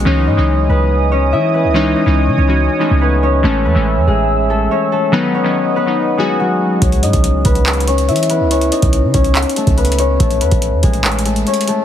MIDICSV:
0, 0, Header, 1, 6, 480
1, 0, Start_track
1, 0, Key_signature, 4, "minor"
1, 0, Tempo, 422535
1, 66, Time_signature, 4, 2, 24, 8
1, 13459, End_track
2, 0, Start_track
2, 0, Title_t, "Analog synth pad"
2, 0, Program_c, 0, 89
2, 65, Note_on_c, 0, 75, 73
2, 65, Note_on_c, 0, 80, 72
2, 65, Note_on_c, 0, 87, 83
2, 66, Note_on_c, 0, 73, 79
2, 3867, Note_off_c, 0, 75, 0
2, 3867, Note_off_c, 0, 87, 0
2, 3904, Note_on_c, 0, 76, 70
2, 3904, Note_on_c, 0, 88, 88
2, 5780, Note_off_c, 0, 80, 0
2, 5781, Note_off_c, 0, 73, 0
2, 5806, Note_off_c, 0, 76, 0
2, 5806, Note_off_c, 0, 88, 0
2, 5826, Note_on_c, 0, 75, 72
2, 5827, Note_on_c, 0, 71, 81
2, 5827, Note_on_c, 0, 78, 69
2, 5827, Note_on_c, 0, 87, 90
2, 7727, Note_off_c, 0, 75, 0
2, 7727, Note_off_c, 0, 78, 0
2, 7728, Note_off_c, 0, 71, 0
2, 7728, Note_off_c, 0, 87, 0
2, 13459, End_track
3, 0, Start_track
3, 0, Title_t, "Harp"
3, 0, Program_c, 1, 46
3, 0, Note_on_c, 1, 54, 67
3, 0, Note_on_c, 1, 56, 70
3, 0, Note_on_c, 1, 59, 64
3, 0, Note_on_c, 1, 66, 87
3, 0, Note_on_c, 1, 68, 83
3, 0, Note_on_c, 1, 71, 83
3, 68, Note_on_c, 1, 73, 81
3, 76, Note_on_c, 1, 61, 64
3, 123, Note_off_c, 1, 54, 0
3, 123, Note_off_c, 1, 56, 0
3, 309, Note_on_c, 1, 75, 75
3, 318, Note_on_c, 1, 63, 54
3, 785, Note_off_c, 1, 71, 0
3, 790, Note_on_c, 1, 71, 91
3, 795, Note_off_c, 1, 59, 0
3, 799, Note_on_c, 1, 59, 60
3, 1264, Note_off_c, 1, 73, 0
3, 1268, Note_on_c, 1, 73, 86
3, 1273, Note_off_c, 1, 61, 0
3, 1278, Note_on_c, 1, 61, 68
3, 1507, Note_on_c, 1, 76, 82
3, 1515, Note_on_c, 1, 64, 63
3, 1575, Note_off_c, 1, 63, 0
3, 1575, Note_off_c, 1, 75, 0
3, 1744, Note_off_c, 1, 71, 0
3, 1748, Note_on_c, 1, 71, 76
3, 1753, Note_off_c, 1, 59, 0
3, 1758, Note_on_c, 1, 59, 58
3, 1926, Note_off_c, 1, 68, 0
3, 1979, Note_off_c, 1, 73, 0
3, 1984, Note_on_c, 1, 73, 92
3, 1988, Note_off_c, 1, 61, 0
3, 1993, Note_on_c, 1, 61, 64
3, 2221, Note_on_c, 1, 75, 79
3, 2231, Note_on_c, 1, 63, 56
3, 2289, Note_off_c, 1, 64, 0
3, 2289, Note_off_c, 1, 76, 0
3, 2350, Note_off_c, 1, 66, 0
3, 2696, Note_off_c, 1, 73, 0
3, 2701, Note_on_c, 1, 73, 79
3, 2705, Note_off_c, 1, 61, 0
3, 2710, Note_on_c, 1, 61, 65
3, 3187, Note_on_c, 1, 69, 86
3, 3196, Note_on_c, 1, 57, 65
3, 3417, Note_off_c, 1, 71, 0
3, 3421, Note_on_c, 1, 71, 74
3, 3426, Note_off_c, 1, 59, 0
3, 3430, Note_on_c, 1, 59, 62
3, 3664, Note_off_c, 1, 73, 0
3, 3669, Note_on_c, 1, 73, 92
3, 3674, Note_off_c, 1, 61, 0
3, 3678, Note_on_c, 1, 61, 69
3, 3900, Note_off_c, 1, 69, 0
3, 3904, Note_on_c, 1, 69, 86
3, 3908, Note_off_c, 1, 57, 0
3, 3912, Note_on_c, 1, 57, 71
3, 4144, Note_off_c, 1, 71, 0
3, 4149, Note_on_c, 1, 71, 68
3, 4153, Note_off_c, 1, 59, 0
3, 4157, Note_on_c, 1, 59, 48
3, 4247, Note_off_c, 1, 75, 0
3, 4628, Note_on_c, 1, 68, 82
3, 4637, Note_on_c, 1, 56, 67
3, 4696, Note_off_c, 1, 57, 0
3, 4696, Note_off_c, 1, 69, 0
3, 5110, Note_on_c, 1, 69, 84
3, 5120, Note_on_c, 1, 57, 64
3, 5178, Note_off_c, 1, 68, 0
3, 5302, Note_off_c, 1, 63, 0
3, 5348, Note_off_c, 1, 73, 0
3, 5352, Note_on_c, 1, 73, 81
3, 5356, Note_off_c, 1, 61, 0
3, 5361, Note_on_c, 1, 61, 60
3, 5585, Note_off_c, 1, 69, 0
3, 5589, Note_on_c, 1, 69, 84
3, 5593, Note_off_c, 1, 57, 0
3, 5598, Note_on_c, 1, 57, 62
3, 5820, Note_off_c, 1, 71, 0
3, 5824, Note_on_c, 1, 71, 104
3, 5828, Note_off_c, 1, 59, 0
3, 5833, Note_on_c, 1, 59, 78
3, 5883, Note_off_c, 1, 56, 0
3, 6067, Note_off_c, 1, 73, 0
3, 6072, Note_on_c, 1, 73, 77
3, 6077, Note_off_c, 1, 61, 0
3, 6081, Note_on_c, 1, 61, 58
3, 6540, Note_off_c, 1, 71, 0
3, 6545, Note_on_c, 1, 71, 80
3, 6549, Note_off_c, 1, 59, 0
3, 6553, Note_on_c, 1, 59, 63
3, 7024, Note_on_c, 1, 68, 82
3, 7032, Note_on_c, 1, 56, 71
3, 7092, Note_off_c, 1, 57, 0
3, 7092, Note_off_c, 1, 69, 0
3, 7265, Note_on_c, 1, 66, 85
3, 7273, Note_on_c, 1, 54, 65
3, 7742, Note_off_c, 1, 73, 0
3, 7747, Note_on_c, 1, 73, 81
3, 7751, Note_off_c, 1, 61, 0
3, 7756, Note_on_c, 1, 61, 67
3, 7803, Note_off_c, 1, 54, 0
3, 7803, Note_off_c, 1, 56, 0
3, 7987, Note_on_c, 1, 75, 76
3, 7996, Note_on_c, 1, 63, 59
3, 8464, Note_off_c, 1, 71, 0
3, 8469, Note_on_c, 1, 71, 92
3, 8473, Note_off_c, 1, 59, 0
3, 8478, Note_on_c, 1, 59, 62
3, 8941, Note_off_c, 1, 73, 0
3, 8946, Note_on_c, 1, 73, 88
3, 8951, Note_off_c, 1, 61, 0
3, 8955, Note_on_c, 1, 61, 72
3, 9185, Note_on_c, 1, 76, 86
3, 9195, Note_on_c, 1, 64, 60
3, 9253, Note_off_c, 1, 63, 0
3, 9253, Note_off_c, 1, 75, 0
3, 9423, Note_off_c, 1, 71, 0
3, 9428, Note_on_c, 1, 71, 79
3, 9433, Note_off_c, 1, 59, 0
3, 9438, Note_on_c, 1, 59, 60
3, 9606, Note_off_c, 1, 68, 0
3, 9659, Note_off_c, 1, 73, 0
3, 9663, Note_on_c, 1, 73, 93
3, 9667, Note_off_c, 1, 61, 0
3, 9672, Note_on_c, 1, 61, 68
3, 9904, Note_on_c, 1, 75, 81
3, 9913, Note_on_c, 1, 63, 60
3, 9972, Note_off_c, 1, 64, 0
3, 9972, Note_off_c, 1, 76, 0
3, 10033, Note_off_c, 1, 66, 0
3, 10378, Note_off_c, 1, 73, 0
3, 10383, Note_on_c, 1, 73, 83
3, 10386, Note_off_c, 1, 61, 0
3, 10390, Note_on_c, 1, 61, 63
3, 10866, Note_on_c, 1, 69, 84
3, 10875, Note_on_c, 1, 57, 64
3, 11099, Note_off_c, 1, 71, 0
3, 11104, Note_on_c, 1, 71, 76
3, 11108, Note_off_c, 1, 59, 0
3, 11113, Note_on_c, 1, 59, 64
3, 11347, Note_off_c, 1, 73, 0
3, 11351, Note_on_c, 1, 73, 94
3, 11356, Note_off_c, 1, 61, 0
3, 11360, Note_on_c, 1, 61, 70
3, 11582, Note_off_c, 1, 69, 0
3, 11586, Note_on_c, 1, 69, 92
3, 11591, Note_off_c, 1, 57, 0
3, 11595, Note_on_c, 1, 57, 73
3, 11825, Note_off_c, 1, 71, 0
3, 11830, Note_on_c, 1, 71, 68
3, 11835, Note_off_c, 1, 59, 0
3, 11839, Note_on_c, 1, 59, 50
3, 11931, Note_off_c, 1, 75, 0
3, 12308, Note_on_c, 1, 68, 81
3, 12317, Note_on_c, 1, 56, 69
3, 12376, Note_off_c, 1, 57, 0
3, 12376, Note_off_c, 1, 69, 0
3, 12790, Note_on_c, 1, 69, 85
3, 12799, Note_on_c, 1, 57, 61
3, 12858, Note_off_c, 1, 68, 0
3, 12985, Note_off_c, 1, 63, 0
3, 13028, Note_off_c, 1, 73, 0
3, 13033, Note_on_c, 1, 73, 80
3, 13037, Note_off_c, 1, 61, 0
3, 13042, Note_on_c, 1, 61, 61
3, 13265, Note_off_c, 1, 69, 0
3, 13269, Note_on_c, 1, 69, 84
3, 13273, Note_off_c, 1, 57, 0
3, 13278, Note_on_c, 1, 57, 62
3, 13459, Note_off_c, 1, 56, 0
3, 13459, Note_off_c, 1, 57, 0
3, 13459, Note_off_c, 1, 59, 0
3, 13459, Note_off_c, 1, 61, 0
3, 13459, Note_off_c, 1, 69, 0
3, 13459, Note_off_c, 1, 71, 0
3, 13459, Note_off_c, 1, 73, 0
3, 13459, End_track
4, 0, Start_track
4, 0, Title_t, "Synth keys"
4, 0, Program_c, 2, 88
4, 0, Control_c, 2, 64, 127
4, 55, Note_on_c, 2, 52, 91
4, 63, Note_on_c, 2, 56, 86
4, 71, Note_on_c, 2, 61, 87
4, 78, Note_on_c, 2, 63, 102
4, 81, Control_c, 2, 64, 0
4, 265, Control_c, 2, 64, 127
4, 289, Note_off_c, 2, 52, 0
4, 293, Note_off_c, 2, 56, 0
4, 296, Note_off_c, 2, 61, 0
4, 300, Note_off_c, 2, 63, 0
4, 418, Note_on_c, 2, 52, 79
4, 425, Note_on_c, 2, 56, 71
4, 432, Note_on_c, 2, 61, 66
4, 440, Note_on_c, 2, 63, 83
4, 1030, Note_off_c, 2, 52, 0
4, 1033, Note_off_c, 2, 56, 0
4, 1037, Note_off_c, 2, 61, 0
4, 1041, Note_off_c, 2, 63, 0
4, 1975, Note_on_c, 2, 52, 95
4, 1982, Note_on_c, 2, 56, 86
4, 1990, Note_on_c, 2, 61, 91
4, 1998, Note_on_c, 2, 63, 110
4, 2208, Note_off_c, 2, 52, 0
4, 2212, Note_off_c, 2, 56, 0
4, 2216, Note_off_c, 2, 61, 0
4, 2220, Note_off_c, 2, 63, 0
4, 2337, Note_on_c, 2, 52, 78
4, 2344, Note_on_c, 2, 56, 75
4, 2352, Note_on_c, 2, 61, 68
4, 2359, Note_on_c, 2, 63, 83
4, 2645, Note_off_c, 2, 52, 0
4, 2649, Note_off_c, 2, 56, 0
4, 2653, Note_off_c, 2, 61, 0
4, 2657, Note_off_c, 2, 63, 0
4, 2813, Note_on_c, 2, 52, 67
4, 2820, Note_on_c, 2, 56, 61
4, 2828, Note_on_c, 2, 61, 60
4, 2835, Note_on_c, 2, 66, 68
4, 3048, Note_off_c, 2, 52, 0
4, 3051, Note_off_c, 2, 56, 0
4, 3055, Note_off_c, 2, 61, 0
4, 3058, Note_off_c, 2, 66, 0
4, 3173, Note_on_c, 2, 52, 70
4, 3181, Note_on_c, 2, 56, 70
4, 3188, Note_on_c, 2, 61, 69
4, 3196, Note_on_c, 2, 63, 74
4, 3635, Note_off_c, 2, 52, 0
4, 3639, Note_off_c, 2, 56, 0
4, 3643, Note_off_c, 2, 61, 0
4, 3647, Note_off_c, 2, 63, 0
4, 3897, Note_on_c, 2, 52, 95
4, 3904, Note_on_c, 2, 56, 80
4, 3912, Note_on_c, 2, 57, 85
4, 3920, Note_on_c, 2, 61, 102
4, 3921, Control_c, 2, 64, 0
4, 4107, Control_c, 2, 64, 127
4, 4129, Note_off_c, 2, 52, 0
4, 4133, Note_off_c, 2, 56, 0
4, 4137, Note_off_c, 2, 57, 0
4, 4141, Note_off_c, 2, 61, 0
4, 4257, Note_on_c, 2, 52, 84
4, 4264, Note_on_c, 2, 56, 68
4, 4272, Note_on_c, 2, 57, 68
4, 4279, Note_on_c, 2, 61, 82
4, 4869, Note_off_c, 2, 52, 0
4, 4873, Note_off_c, 2, 56, 0
4, 4877, Note_off_c, 2, 57, 0
4, 4880, Note_off_c, 2, 61, 0
4, 5814, Note_on_c, 2, 51, 94
4, 5822, Note_on_c, 2, 54, 98
4, 5830, Note_on_c, 2, 59, 100
4, 5837, Note_on_c, 2, 63, 107
4, 5839, Control_c, 2, 64, 0
4, 6048, Note_off_c, 2, 51, 0
4, 6052, Note_off_c, 2, 54, 0
4, 6056, Note_off_c, 2, 59, 0
4, 6060, Note_off_c, 2, 63, 0
4, 6067, Control_c, 2, 64, 127
4, 6178, Note_on_c, 2, 51, 79
4, 6185, Note_on_c, 2, 54, 77
4, 6193, Note_on_c, 2, 59, 70
4, 6199, Note_on_c, 2, 61, 82
4, 6486, Note_off_c, 2, 51, 0
4, 6489, Note_off_c, 2, 54, 0
4, 6493, Note_off_c, 2, 59, 0
4, 6496, Note_off_c, 2, 61, 0
4, 6657, Note_on_c, 2, 51, 65
4, 6665, Note_on_c, 2, 54, 58
4, 6673, Note_on_c, 2, 59, 61
4, 6680, Note_on_c, 2, 63, 75
4, 6890, Note_off_c, 2, 51, 0
4, 6894, Note_off_c, 2, 54, 0
4, 6897, Note_off_c, 2, 59, 0
4, 6901, Note_off_c, 2, 63, 0
4, 7016, Note_on_c, 2, 51, 67
4, 7024, Note_on_c, 2, 54, 67
4, 7031, Note_on_c, 2, 59, 68
4, 7039, Note_on_c, 2, 66, 86
4, 7477, Note_off_c, 2, 51, 0
4, 7481, Note_off_c, 2, 54, 0
4, 7484, Note_off_c, 2, 59, 0
4, 7488, Note_off_c, 2, 66, 0
4, 7760, Control_c, 2, 64, 0
4, 13459, End_track
5, 0, Start_track
5, 0, Title_t, "808-style bass"
5, 0, Program_c, 3, 38
5, 67, Note_on_c, 3, 37, 104
5, 305, Note_on_c, 3, 44, 94
5, 322, Note_off_c, 3, 37, 0
5, 420, Note_off_c, 3, 44, 0
5, 427, Note_on_c, 3, 37, 98
5, 772, Note_off_c, 3, 37, 0
5, 786, Note_on_c, 3, 37, 100
5, 1506, Note_on_c, 3, 52, 98
5, 1523, Note_off_c, 3, 37, 0
5, 1864, Note_on_c, 3, 37, 99
5, 1881, Note_off_c, 3, 52, 0
5, 2207, Note_off_c, 3, 37, 0
5, 2346, Note_on_c, 3, 37, 100
5, 2585, Note_on_c, 3, 49, 96
5, 2602, Note_off_c, 3, 37, 0
5, 2700, Note_off_c, 3, 49, 0
5, 2704, Note_on_c, 3, 37, 99
5, 3051, Note_off_c, 3, 37, 0
5, 3306, Note_on_c, 3, 37, 106
5, 3882, Note_off_c, 3, 37, 0
5, 3905, Note_on_c, 3, 33, 102
5, 4146, Note_on_c, 3, 40, 97
5, 4163, Note_off_c, 3, 33, 0
5, 4260, Note_off_c, 3, 40, 0
5, 4266, Note_on_c, 3, 33, 102
5, 4505, Note_on_c, 3, 40, 97
5, 4522, Note_off_c, 3, 33, 0
5, 4620, Note_off_c, 3, 40, 0
5, 4626, Note_on_c, 3, 33, 101
5, 5318, Note_off_c, 3, 33, 0
5, 7745, Note_on_c, 3, 37, 104
5, 7986, Note_on_c, 3, 44, 97
5, 8003, Note_off_c, 3, 37, 0
5, 8100, Note_off_c, 3, 44, 0
5, 8105, Note_on_c, 3, 37, 95
5, 8451, Note_off_c, 3, 37, 0
5, 8467, Note_on_c, 3, 37, 104
5, 9185, Note_on_c, 3, 52, 97
5, 9203, Note_off_c, 3, 37, 0
5, 9545, Note_on_c, 3, 37, 98
5, 9563, Note_off_c, 3, 52, 0
5, 9888, Note_off_c, 3, 37, 0
5, 10027, Note_on_c, 3, 37, 100
5, 10267, Note_on_c, 3, 49, 96
5, 10284, Note_off_c, 3, 37, 0
5, 10381, Note_off_c, 3, 49, 0
5, 10387, Note_on_c, 3, 37, 98
5, 10732, Note_off_c, 3, 37, 0
5, 10986, Note_on_c, 3, 37, 107
5, 11562, Note_off_c, 3, 37, 0
5, 11588, Note_on_c, 3, 33, 102
5, 11826, Note_on_c, 3, 40, 97
5, 11843, Note_off_c, 3, 33, 0
5, 11940, Note_off_c, 3, 40, 0
5, 11948, Note_on_c, 3, 33, 100
5, 12186, Note_on_c, 3, 40, 101
5, 12203, Note_off_c, 3, 33, 0
5, 12300, Note_off_c, 3, 40, 0
5, 12307, Note_on_c, 3, 33, 102
5, 12998, Note_off_c, 3, 33, 0
5, 13459, End_track
6, 0, Start_track
6, 0, Title_t, "Drums"
6, 7745, Note_on_c, 9, 42, 86
6, 7746, Note_on_c, 9, 36, 110
6, 7859, Note_off_c, 9, 36, 0
6, 7859, Note_off_c, 9, 42, 0
6, 7865, Note_on_c, 9, 42, 59
6, 7979, Note_off_c, 9, 42, 0
6, 7985, Note_on_c, 9, 42, 83
6, 8099, Note_off_c, 9, 42, 0
6, 8104, Note_on_c, 9, 42, 68
6, 8106, Note_on_c, 9, 36, 92
6, 8217, Note_off_c, 9, 42, 0
6, 8220, Note_off_c, 9, 36, 0
6, 8223, Note_on_c, 9, 42, 84
6, 8337, Note_off_c, 9, 42, 0
6, 8461, Note_on_c, 9, 42, 69
6, 8466, Note_on_c, 9, 36, 93
6, 8575, Note_off_c, 9, 42, 0
6, 8580, Note_off_c, 9, 36, 0
6, 8581, Note_on_c, 9, 42, 47
6, 8695, Note_off_c, 9, 42, 0
6, 8705, Note_on_c, 9, 39, 124
6, 8706, Note_on_c, 9, 42, 46
6, 8786, Note_off_c, 9, 42, 0
6, 8786, Note_on_c, 9, 42, 62
6, 8818, Note_off_c, 9, 39, 0
6, 8866, Note_off_c, 9, 42, 0
6, 8866, Note_on_c, 9, 42, 76
6, 8946, Note_off_c, 9, 42, 0
6, 8946, Note_on_c, 9, 42, 88
6, 9060, Note_off_c, 9, 42, 0
6, 9066, Note_on_c, 9, 42, 53
6, 9180, Note_off_c, 9, 42, 0
6, 9186, Note_on_c, 9, 42, 47
6, 9267, Note_off_c, 9, 42, 0
6, 9267, Note_on_c, 9, 42, 64
6, 9346, Note_off_c, 9, 42, 0
6, 9346, Note_on_c, 9, 42, 78
6, 9424, Note_off_c, 9, 42, 0
6, 9424, Note_on_c, 9, 42, 82
6, 9538, Note_off_c, 9, 42, 0
6, 9666, Note_on_c, 9, 42, 83
6, 9779, Note_off_c, 9, 42, 0
6, 9786, Note_on_c, 9, 42, 59
6, 9899, Note_off_c, 9, 42, 0
6, 9905, Note_on_c, 9, 42, 83
6, 10019, Note_off_c, 9, 42, 0
6, 10024, Note_on_c, 9, 42, 67
6, 10027, Note_on_c, 9, 36, 92
6, 10137, Note_off_c, 9, 42, 0
6, 10140, Note_off_c, 9, 36, 0
6, 10144, Note_on_c, 9, 42, 84
6, 10257, Note_off_c, 9, 42, 0
6, 10382, Note_on_c, 9, 42, 72
6, 10387, Note_on_c, 9, 36, 92
6, 10496, Note_off_c, 9, 42, 0
6, 10501, Note_off_c, 9, 36, 0
6, 10502, Note_on_c, 9, 42, 48
6, 10615, Note_off_c, 9, 42, 0
6, 10625, Note_on_c, 9, 39, 123
6, 10626, Note_on_c, 9, 42, 45
6, 10707, Note_off_c, 9, 42, 0
6, 10707, Note_on_c, 9, 42, 62
6, 10739, Note_off_c, 9, 39, 0
6, 10786, Note_off_c, 9, 42, 0
6, 10786, Note_on_c, 9, 42, 77
6, 10865, Note_off_c, 9, 42, 0
6, 10865, Note_on_c, 9, 42, 86
6, 10978, Note_off_c, 9, 42, 0
6, 10985, Note_on_c, 9, 42, 53
6, 10986, Note_on_c, 9, 36, 91
6, 11099, Note_off_c, 9, 36, 0
6, 11099, Note_off_c, 9, 42, 0
6, 11106, Note_on_c, 9, 42, 47
6, 11186, Note_off_c, 9, 42, 0
6, 11186, Note_on_c, 9, 42, 65
6, 11267, Note_off_c, 9, 42, 0
6, 11267, Note_on_c, 9, 42, 79
6, 11343, Note_off_c, 9, 42, 0
6, 11343, Note_on_c, 9, 42, 83
6, 11457, Note_off_c, 9, 42, 0
6, 11587, Note_on_c, 9, 36, 111
6, 11588, Note_on_c, 9, 42, 84
6, 11701, Note_off_c, 9, 36, 0
6, 11701, Note_off_c, 9, 42, 0
6, 11707, Note_on_c, 9, 42, 59
6, 11821, Note_off_c, 9, 42, 0
6, 11826, Note_on_c, 9, 42, 84
6, 11939, Note_off_c, 9, 42, 0
6, 11945, Note_on_c, 9, 42, 66
6, 11947, Note_on_c, 9, 36, 90
6, 12058, Note_off_c, 9, 42, 0
6, 12061, Note_off_c, 9, 36, 0
6, 12064, Note_on_c, 9, 42, 85
6, 12177, Note_off_c, 9, 42, 0
6, 12302, Note_on_c, 9, 42, 72
6, 12307, Note_on_c, 9, 36, 91
6, 12416, Note_off_c, 9, 42, 0
6, 12421, Note_off_c, 9, 36, 0
6, 12422, Note_on_c, 9, 42, 47
6, 12536, Note_off_c, 9, 42, 0
6, 12546, Note_on_c, 9, 39, 121
6, 12547, Note_on_c, 9, 42, 46
6, 12627, Note_off_c, 9, 42, 0
6, 12627, Note_on_c, 9, 42, 62
6, 12660, Note_off_c, 9, 39, 0
6, 12707, Note_off_c, 9, 42, 0
6, 12707, Note_on_c, 9, 42, 82
6, 12786, Note_off_c, 9, 42, 0
6, 12786, Note_on_c, 9, 42, 86
6, 12900, Note_off_c, 9, 42, 0
6, 12906, Note_on_c, 9, 42, 52
6, 13020, Note_off_c, 9, 42, 0
6, 13026, Note_on_c, 9, 42, 49
6, 13105, Note_off_c, 9, 42, 0
6, 13105, Note_on_c, 9, 42, 62
6, 13185, Note_off_c, 9, 42, 0
6, 13185, Note_on_c, 9, 42, 79
6, 13263, Note_off_c, 9, 42, 0
6, 13263, Note_on_c, 9, 42, 82
6, 13377, Note_off_c, 9, 42, 0
6, 13459, End_track
0, 0, End_of_file